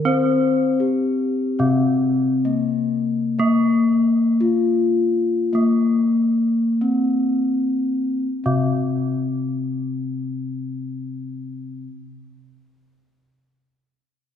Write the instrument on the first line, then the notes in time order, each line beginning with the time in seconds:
bronze metallophone
0.05 C4 C5
0.80 G4
1.59 C3 C4
2.45 A#3
3.39 A#3
4.41 F4
5.53 A#3
6.81 C4
8.44 C3 C4